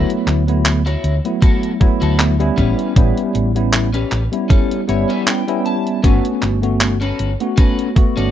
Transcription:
Already playing: F#3 A3 B3 E4
0.10 closed hi-hat
0.27 D2, muted clean electric guitar stroke, clap, closed hi-hat
0.47 F#3 A3 B3 E4, closed hi-hat
0.65 clap, closed hi-hat
0.86 E4 F#4 C#5, closed hi-hat
1.04 D2, closed hi-hat
1.24 F#3 A3 B3 E4, closed hi-hat
1.42 E4 F#4 A4, kick, closed hi-hat
1.63 closed hi-hat
1.80 F#3 A3 B3 E4, kick, closed hi-hat
2.01 D2 E4 F#4 A4, closed hi-hat
2.19 clap, closed hi-hat
2.39 G3 B3 C#4 E4, muted clean electric guitar stroke, closed hi-hat
2.57 A1 C#4 G4 B4, kick, closed hi-hat
2.79 closed hi-hat
2.96 A1 G3 B3 C#4 E4, kick, closed hi-hat
3.17 closed hi-hat
3.34 A1, muted clean electric guitar stroke, closed hi-hat
3.55 G3 B3 C#4 E4, closed hi-hat
3.73 clap, closed hi-hat
3.94 C#4 G4 B4, closed hi-hat
4.12 A1, clap, closed hi-hat
4.32 G3 B3 C#4 E4, closed hi-hat
4.49 C#4 G4 A4, kick, closed hi-hat
4.71 closed hi-hat
4.88 G1 G3 B3 C#4 E4 C#5, closed hi-hat
5.09 C#4 G4 B4 E5, closed hi-hat
5.27 G5, clap, closed hi-hat
5.47 G3 B3 C#4 E4, muted clean electric guitar stroke, closed hi-hat
5.66 A5, closed hi-hat
5.87 closed hi-hat
6.03 G1 A3 B3 C#4 F#4 A4 B4, kick, closed hi-hat
6.25 closed hi-hat
6.42 G1, muted clean electric guitar stroke, clap, closed hi-hat
6.62 A3 B3 C#4 F#4, closed hi-hat
6.81 clap, closed hi-hat
7.01 C#4 F#4 A4 B4, closed hi-hat
7.19 G1, closed hi-hat
7.40 A3 B3 C#4 F#4, closed hi-hat
7.57 C#4 F#4 A4 B4, kick, closed hi-hat
7.79 closed hi-hat
7.96 A3 B3 F#4, kick, closed hi-hat
8.17 G1 C#4 F#4 A4 D5, closed hi-hat

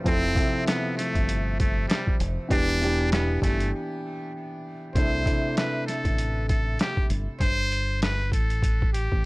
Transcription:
0.04 F1 F3 C4 E4 A4, kick, closed hi-hat
0.35 C3 F3 E4 A4, kick, closed hi-hat
0.67 B3, snare, closed hi-hat
0.97 A3, snare, closed hi-hat
1.15 G1, kick, closed hi-hat
1.29 closed hi-hat
1.60 A3, kick, closed hi-hat
1.88 G3, snare, closed hi-hat
2.07 kick
2.20 F1, closed hi-hat
2.49 E1 E3 B3 D4 G4, kick, closed hi-hat
2.69 closed hi-hat
2.82 E3 B3 D4 G4, closed hi-hat
3.12 B3, snare, closed hi-hat
3.42 G1 A3, kick, snare, closed hi-hat
3.60 closed hi-hat
4.95 C2 C3 A3 D4 E4 C5, kick, closed hi-hat
5.25 C3 A3 D4 E4, kick, closed hi-hat
5.57 B4, snare, closed hi-hat
5.87 A4, snare, closed hi-hat
6.05 A1, kick, closed hi-hat
6.18 closed hi-hat
6.49 A4, kick, closed hi-hat
6.79 G4, snare, closed hi-hat
6.97 kick
7.10 G1, closed hi-hat
7.40 G1 C5, kick, closed hi-hat
7.72 closed hi-hat
8.02 B4, snare, closed hi-hat
8.32 A1 A4, kick, closed hi-hat
8.50 closed hi-hat
8.63 kick, closed hi-hat
8.82 kick
8.93 G4, closed hi-hat
9.12 A1, kick

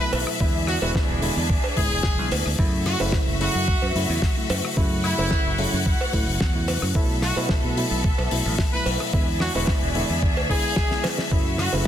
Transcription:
Already playing: B3 A4 E5
0.00 B2 F#3 A3 E4 B4
0.13 B1, open hi-hat, cowbell
0.27 cross-stick
0.40 E2 D3 G#3 B3 D4 E4 G#4, kick
0.67 F#4, cross-stick, open hi-hat
0.82 E1 D3 G#3 B3 E4 F#4, cowbell
0.95 kick, snare
1.09 E1
1.22 D3 G#3 B3 E4, open hi-hat
1.37 E2
1.50 kick
1.64 cowbell
1.76 G#2 D3 G#3 B3 E4 G#4, kick, open hi-hat
1.91 E1
2.03 kick, snare
2.18 B1 D3 G#3 B3 E4
2.32 D2, open hi-hat, cowbell
2.46 D2, cross-stick
2.58 F#2 C#3 F#3 A3 E4 F#4 E5, kick
2.86 F#4, cross-stick, snare, open hi-hat
3.00 F#1 C#3 F#3 A3 E4, cowbell
3.12 kick, snare
3.28 F#1
3.40 C#3 F#3 A3 E4 F#4, open hi-hat
3.55 F#2
3.68 kick
3.82 F#2, cowbell
3.95 F#2 C#3 F#3 A3 E4, open hi-hat
4.10 E2
4.22 kick, snare
4.37 C#3 F#3 A3 E4
4.50 F#2, open hi-hat, cowbell
4.65 cross-stick
4.76 F#2 C#3 F#3 A3 E4 F#5, kick
5.04 E4, cross-stick, open hi-hat
5.18 F#1 C#3 F#3 A3 E4, cowbell
5.31 kick, snare
5.46 F#1
5.58 C#3 F#3 A3 E4, open hi-hat
5.73 F#2
5.86 kick
6.01 cowbell
6.13 A2 C#3 F#3 A3 E4, kick, open hi-hat
6.28 F#1
6.41 E2, kick, snare
6.54 C#3 F#3 A3 E4
6.68 open hi-hat, cowbell
6.82 F#2, cross-stick
6.95 B1 B2 F#3 A3 B3 E4 A4 E5, kick
7.22 F#4, cross-stick, snare, open hi-hat
7.36 B2 F#3 A3 E4, cowbell
7.49 kick, snare
7.64 B2
7.77 B2 F#3 A3 E4, open hi-hat
7.91 B1
8.04 kick
8.18 B1, cowbell
8.31 B1 B2 F#3 A3 E4, open hi-hat
8.46 A1
8.58 kick, snare
8.73 B2 F#3 A3 E4 B4
8.86 B1, open hi-hat, cowbell
9.00 cross-stick
9.13 E2 D3 G#3 B3 D4 E4 G#4, kick
9.40 F#4, cross-stick, snare, open hi-hat
9.55 E1 D3 G#3 B3 E4 F#4, cowbell
9.67 kick, snare
9.82 E1
9.95 D3 G#3 B3 E4, open hi-hat
10.10 E2
10.22 kick
10.37 D2, cowbell
10.49 D3 G#3 B3 E4 G#4, kick, open hi-hat
10.76 kick, snare
10.91 D3 G#3 B3 E4, snare
11.04 snare, open hi-hat, cowbell
11.18 snare
11.31 F#2 C#3 F#3 A3 E4 F#4, kick
11.58 F#4, cross-stick, snare, open hi-hat
11.73 F#1 C#3 F#3 A3 E4, cowbell

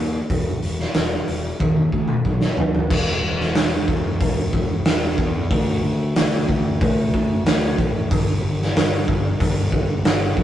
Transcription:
Already playing: D#2
0.30 E1, kick, open hi-hat
0.62 E1, open hi-hat
0.79 snare
0.94 E1, snare, open hi-hat
1.28 E1, open hi-hat
1.60 E1, kick, high tom
1.76 high tom
1.92 D2, kick
2.08 mid tom
2.25 B1, kick
2.41 snare
2.57 B1, floor tom
2.75 floor tom
2.90 E1, kick, crash
3.22 E1
3.40 snare
3.55 E1, snare, open hi-hat
3.88 E1, kick
4.21 E1, kick, open hi-hat
4.53 kick
4.85 E1, snare, open hi-hat
5.18 E2, kick
5.51 D2, kick, open hi-hat
5.84 D2
6.16 D2, snare, open hi-hat
6.48 D2, kick
6.81 D2, kick, open hi-hat
7.14 kick
7.46 D2, snare, open hi-hat
7.78 A1, kick
8.11 G1, kick, open hi-hat
8.42 G1
8.62 snare
8.76 G1, snare, open hi-hat
9.08 G1, kick
9.40 G1, kick, open hi-hat
9.72 kick
10.05 G1, snare, open hi-hat
10.37 B1, kick

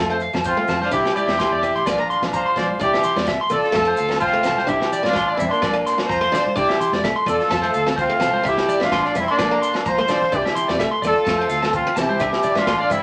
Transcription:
Already playing: F4 A4
0.00 F2
0.09 A3 C5, maracas
0.20 F5, maracas
0.33 F2 C4 A5, snare, low conga, low agogo, maracas
0.44 C4 F4 C5, kick, maracas
0.57 A3, high conga
0.68 F2 C4 A5, snare, low conga, low agogo, maracas
0.81 D4 F4 C5, snare, high conga
0.91 C2 D4 E4 G4 E5, kick, maracas
1.05 snare, low agogo, maracas
1.15 E4 G4 D5, high conga, maracas
1.27 E2 C4 E5, snare, high conga, maracas
1.38 A#3 C6, kick, snare, low agogo, maracas
1.51 E2 D5
1.62 C4 E5, low conga, maracas
1.76 A1 C6, maracas
1.86 A#1 A#3 D4 F4 D5, kick, snare, low agogo, maracas
1.98 A#3 A#5, maracas
2.10 C6, maracas
2.22 A#1 D4, snare, low conga, low agogo, maracas
2.33 F4 C5 A#5, kick, maracas
2.46 C6
2.56 A#1 D4 D5, snare, high conga, low conga, low agogo, maracas
2.69 high conga
2.79 C2 D4 E4 G4 D5, kick, maracas
2.93 E5, snare, low agogo
3.03 C6, low conga, maracas
3.16 E2 C4 D5, snare, high conga, maracas
3.25 C3 A3 E5, kick, snare, low agogo, maracas
3.41 C6
3.49 C2 A#3 F4 A4 D5, low conga, maracas
3.63 snare, maracas
3.72 F2 A3 A5, kick, snare, high conga, low agogo, maracas
3.85 A3 C5
3.97 D2 F5, maracas
4.09 C4 A5, snare, low agogo, maracas
4.19 C4 F4 C5, kick, maracas
4.33 A3
4.43 C2 C4 A5, snare, low conga, low agogo, maracas
4.58 C5, snare, high conga
4.66 C2 D4 E4 G4 E5, kick, maracas
4.81 snare, low agogo
4.92 D5, low conga, maracas
5.03 A1 C4 F4 D5, snare, high conga, maracas
5.07 D4
5.13 A1 A#3 C6, kick, snare, low agogo, maracas
5.28 D5
5.35 C4 E4
5.39 F2 C4 E5, high conga, low conga, maracas
5.47 D4 C6
5.51 A#3, maracas
5.62 A#1 A#3 D5, kick, snare, high conga, low agogo, maracas
5.73 A#3
5.86 C6, snare, maracas
5.98 D4, snare, low agogo, maracas
6.07 F2 F4 C5 A#5, kick
6.11 maracas
6.21 A#3 C6
6.32 D4 D5, snare, low conga, low agogo, maracas
6.46 high conga
6.55 C2 D4 E4 G4 D5, kick, maracas
6.69 E5, snare, low agogo
6.80 C6, low conga, maracas
6.93 E2 C4 D5, snare, high conga
7.04 C3 A3 E5, kick, snare, low agogo, maracas
7.16 C6
7.26 E2 A#3 F4 A4 D5, high conga, low conga, maracas
7.40 snare, maracas
7.50 F2 F3 A5, kick, snare, high conga, low agogo, maracas
7.62 A3 C5
7.74 D2 F5, maracas
7.86 C4 A5, snare, low agogo, maracas
7.96 C4 F4 C5, kick, maracas
8.09 A3
8.20 C2 C4 A5, snare, low conga, low agogo, maracas
8.33 C5, high conga
8.43 C2 D4 E4 G4 E5, kick, maracas
8.58 snare, low agogo
8.68 D5, low conga, maracas
8.80 A1 C4 D4 F4 E5, snare, maracas
8.92 A1 A#3 C6, kick, snare, low agogo, maracas
9.05 D5, snare
9.15 F2 C4 E4 E5, high conga, low conga, maracas
9.28 A#3 D4 C6, maracas
9.38 A#1 A#3 D5, kick, snare, high conga, low agogo, maracas
9.51 A#3 A#5
9.62 C6, maracas
9.74 D4, snare, low agogo
9.86 A#1 F4 C5 A#5, kick, high conga, maracas
9.98 A#3 C6, high conga
10.08 D4 D5, snare, low conga, low agogo, maracas
10.21 snare, low conga, maracas
10.32 C2 D4 E4 G4 D5, kick, maracas
10.45 E5, snare, low agogo
10.55 C6, low conga, maracas
10.68 E2 C4 D5, snare, maracas
10.79 C3 A3 E5, kick, snare, low agogo, maracas
10.91 C6
11.02 E2 A#3 F4 A4 D5, high conga, low conga, maracas
11.15 maracas
11.25 F2 A3 A5, kick, snare, high conga, low agogo, maracas
11.38 A3 C5
11.49 D2 F5, snare, maracas
11.62 C4 A5, snare, low agogo, maracas
11.73 C4 F4, muted clean electric guitar stroke, kick, maracas
11.87 F3
11.96 C2 C4 E4 G4 A5, snare, low conga, low agogo, maracas
12.09 C5, high conga
12.19 C2 D4 E5, kick, maracas
12.33 snare, low agogo
12.43 D5, low conga, maracas
12.55 A1 C4 D4 F4 E5, snare, high conga, maracas
12.67 A1 A#3 C6, kick, snare, low agogo, maracas
12.80 D5
12.90 G2 C4 E4 E5, high conga, low conga, maracas

